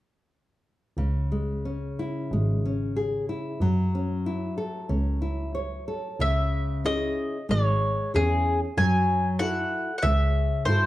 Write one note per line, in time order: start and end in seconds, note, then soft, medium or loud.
0.97 1.85 C#2 medium
0.97 3.57 C#3 soft
1.32 1.65 G#3 soft
1.65 1.98 C#4 soft
1.99 2.31 E4 soft
2.32 3.15 G#1 medium
2.32 2.64 G#3 soft
2.66 2.96 C#4 soft
2.96 3.27 G#4 soft
3.29 3.60 E4 soft
3.61 4.44 F#2 medium
3.61 6.15 F#3 medium
3.95 4.25 C#4 soft
4.26 4.57 E4 soft
4.58 4.88 A4 soft
4.89 5.74 C#2 medium
4.89 5.20 C#4 soft
5.22 5.53 E4 soft
5.55 5.86 C#5 soft
5.88 6.19 A4 soft
6.19 7.04 C#2 medium
6.19 6.83 C#3 medium
6.19 6.85 E5 medium
6.84 7.36 C#4 soft
6.84 7.37 E4 soft
6.84 7.37 G#4 soft
6.84 7.46 D#5 medium
7.49 7.92 G#1 medium
7.49 8.12 G#3 soft
7.49 8.11 C#5 medium
8.14 8.56 E2 medium
8.14 8.64 C#4 soft
8.14 8.65 E4 soft
8.14 8.65 G#4 soft
8.14 8.59 G#4 medium
8.77 9.60 F#2 medium
8.77 9.38 F#3 medium
8.77 9.39 G#5 medium
9.39 9.91 E4 soft
9.39 9.91 F#4 soft
9.39 9.91 A4 soft
9.39 9.97 F#5 medium
9.98 10.04 F#5 medium
10.03 10.45 C#2 medium
10.03 10.65 C#3 medium
10.03 10.62 E5 medium
10.65 10.86 G2 medium
10.65 10.86 E4 soft
10.65 10.86 F#4 soft
10.65 10.86 A4 medium
10.65 10.86 C5 medium